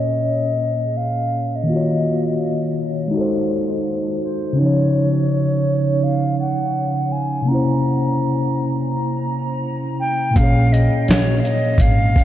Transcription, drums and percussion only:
10.36 kick, closed hi-hat
10.74 closed hi-hat, shaker
11.08 snare, closed hi-hat
11.45 closed hi-hat, shaker
11.78 kick, closed hi-hat
12.16 kick, shaker

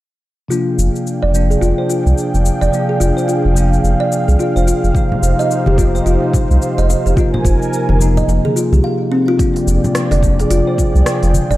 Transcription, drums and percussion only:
0.51 cabasa
0.79 cabasa
0.96 cabasa
1.07 cabasa
1.35 cabasa
1.51 cabasa
1.62 cabasa
1.90 cabasa
2.07 cabasa
2.18 cabasa
2.34 cabasa
2.45 cabasa
2.62 cabasa
2.73 cabasa
3.01 cabasa
3.18 cabasa
3.29 cabasa
3.57 cabasa
3.73 cabasa
3.85 cabasa
4.12 cabasa
4.29 cabasa
4.40 cabasa
4.57 cabasa
4.68 cabasa
4.84 cabasa
4.95 kick, cabasa
5.12 low conga
5.23 cabasa
5.40 cabasa
5.51 cabasa
5.66 high bongo, high conga
5.78 kick, cabasa
5.96 cabasa
6.07 cabasa
6.33 kick, low conga, cabasa
6.51 cabasa
6.62 cabasa
6.79 cabasa
6.90 high bongo, cabasa
7.07 cabasa
7.17 kick, cabasa
7.34 low conga
7.45 kick, cabasa
7.62 cabasa
7.73 cabasa
7.89 high bongo, high conga
8.00 high conga, cabasa
8.17 low conga, cabasa
8.29 high bongo, cabasa
8.45 high conga
8.57 cabasa
8.73 high conga, cabasa
9.39 kick, open hi-hat, cabasa
9.56 open hi-hat, high bongo
9.68 cabasa
9.84 low conga, cabasa
9.95 cross-stick, open hi-hat, cabasa
10.11 open hi-hat, high bongo, high conga
10.23 kick, cabasa
10.39 open hi-hat, high bongo, cabasa
10.50 open hi-hat, cabasa
10.78 kick, cabasa
10.96 cabasa
11.06 cross-stick, open hi-hat, cabasa
11.23 open hi-hat, cabasa
11.34 high conga, cabasa
11.51 low conga, cabasa

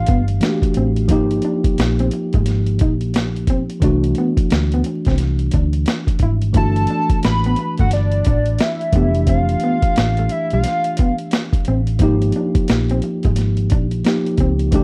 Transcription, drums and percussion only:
0.06 kick, closed hi-hat
0.28 closed hi-hat
0.41 snare, closed hi-hat
0.62 kick, closed hi-hat
0.74 closed hi-hat
0.96 closed hi-hat
1.09 kick, closed hi-hat
1.31 closed hi-hat
1.42 closed hi-hat
1.64 kick, closed hi-hat
1.78 snare, closed hi-hat
1.99 closed hi-hat
2.11 closed hi-hat
2.33 kick, closed hi-hat
2.46 snare, closed hi-hat
2.66 closed hi-hat
2.79 kick, closed hi-hat
3.01 closed hi-hat
3.14 snare, closed hi-hat
3.36 closed hi-hat
3.47 kick, closed hi-hat
3.70 closed hi-hat
3.82 kick, closed hi-hat
4.04 closed hi-hat
4.15 closed hi-hat
4.37 kick, closed hi-hat
4.50 snare, closed hi-hat
4.72 closed hi-hat
4.84 closed hi-hat
5.05 kick, snare, closed hi-hat
5.18 snare, closed hi-hat
5.39 closed hi-hat
5.51 kick, closed hi-hat
5.73 closed hi-hat
5.86 snare, closed hi-hat
6.07 kick, closed hi-hat
6.19 kick, closed hi-hat
6.42 closed hi-hat
6.54 kick, closed hi-hat
6.76 closed hi-hat
6.87 closed hi-hat
7.10 kick, closed hi-hat
7.23 snare, closed hi-hat
7.44 closed hi-hat
7.56 closed hi-hat
7.78 kick, closed hi-hat
7.91 snare, closed hi-hat
8.12 closed hi-hat
8.25 kick, closed hi-hat
8.46 closed hi-hat
8.58 snare, closed hi-hat
8.81 closed hi-hat
8.93 kick, closed hi-hat
9.15 closed hi-hat
9.27 kick, closed hi-hat
9.49 closed hi-hat
9.60 closed hi-hat
9.82 kick, closed hi-hat
9.96 snare, closed hi-hat
10.17 closed hi-hat
10.29 closed hi-hat
10.50 closed hi-hat
10.64 snare, closed hi-hat
10.84 closed hi-hat
10.97 kick, closed hi-hat
11.18 closed hi-hat
11.31 snare, closed hi-hat
11.53 kick, closed hi-hat
11.65 closed hi-hat
11.87 closed hi-hat
11.99 kick, closed hi-hat
12.22 closed hi-hat
12.32 closed hi-hat
12.55 kick, closed hi-hat
12.68 snare, closed hi-hat
12.89 closed hi-hat
13.02 closed hi-hat
13.23 kick, closed hi-hat
13.36 snare, closed hi-hat
13.57 closed hi-hat
13.70 kick, closed hi-hat
13.91 closed hi-hat
14.04 snare, closed hi-hat
14.26 closed hi-hat
14.38 kick, closed hi-hat
14.59 closed hi-hat
14.72 kick, closed hi-hat

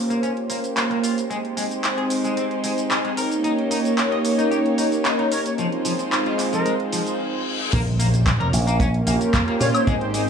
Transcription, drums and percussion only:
0.10 closed hi-hat, shaker
0.23 closed hi-hat, shaker
0.37 closed hi-hat
0.50 open hi-hat, shaker
0.64 closed hi-hat, shaker
0.77 clap, closed hi-hat, shaker
0.91 closed hi-hat
1.04 open hi-hat, shaker
1.18 closed hi-hat, shaker
1.31 closed hi-hat, shaker
1.45 closed hi-hat
1.57 open hi-hat, shaker
1.71 closed hi-hat, shaker
1.84 clap, closed hi-hat, shaker
1.98 closed hi-hat
2.10 open hi-hat, shaker
2.24 closed hi-hat, shaker
2.37 closed hi-hat, shaker
2.51 closed hi-hat
2.64 open hi-hat, shaker
2.78 closed hi-hat, shaker
2.91 clap, closed hi-hat, shaker
3.05 closed hi-hat
3.17 open hi-hat, shaker
3.32 closed hi-hat, shaker
3.44 closed hi-hat, shaker
3.58 closed hi-hat
3.71 open hi-hat, shaker
3.85 closed hi-hat, shaker
3.98 clap, closed hi-hat, shaker
4.12 closed hi-hat
4.25 open hi-hat, shaker
4.39 closed hi-hat, shaker
4.52 closed hi-hat, shaker
4.66 closed hi-hat
4.78 open hi-hat, shaker
4.92 closed hi-hat, shaker
5.05 clap, closed hi-hat, shaker
5.19 closed hi-hat
5.32 open hi-hat, shaker
5.46 closed hi-hat, shaker
5.58 closed hi-hat, shaker
5.72 closed hi-hat
5.85 open hi-hat, shaker
5.99 closed hi-hat, shaker
6.12 clap, closed hi-hat, shaker
6.26 closed hi-hat
6.39 clap, open hi-hat, shaker
6.53 closed hi-hat, shaker
6.66 closed hi-hat, shaker
6.80 closed hi-hat
6.92 open hi-hat, shaker
7.07 closed hi-hat, shaker
7.73 kick, closed hi-hat, crash, shaker
7.87 closed hi-hat
8.00 open hi-hat, shaker
8.14 closed hi-hat, shaker
8.26 kick, clap, closed hi-hat, shaker
8.41 closed hi-hat
8.53 open hi-hat, shaker
8.68 closed hi-hat, shaker
8.80 kick, closed hi-hat, shaker
8.94 closed hi-hat
9.07 open hi-hat, shaker
9.21 closed hi-hat, shaker
9.34 kick, clap, closed hi-hat, shaker
9.48 closed hi-hat
9.61 open hi-hat, shaker
9.75 closed hi-hat, high woodblock, shaker
9.87 kick, closed hi-hat, shaker
10.01 closed hi-hat
10.14 open hi-hat, shaker

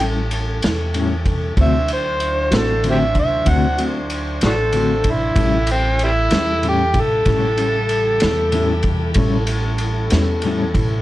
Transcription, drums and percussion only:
0.00 ride
0.31 ride
0.62 snare, ride
0.94 ride
1.25 kick, ride
1.57 kick, ride
1.88 ride
2.20 ride
2.51 snare, ride
2.83 ride
3.15 kick, ride
3.46 kick, ride
3.78 ride
4.10 ride
4.41 snare, ride
4.72 ride
5.04 kick, ride
5.36 kick, ride
5.67 ride
5.99 ride
6.31 snare, ride
6.63 ride
6.94 kick, ride
7.26 kick, snare, ride
7.57 ride
7.89 ride
8.20 snare, ride
8.52 ride
8.83 kick, ride
9.14 kick, ride
9.47 ride
9.78 ride
10.10 snare, ride
10.42 ride
10.74 kick, ride

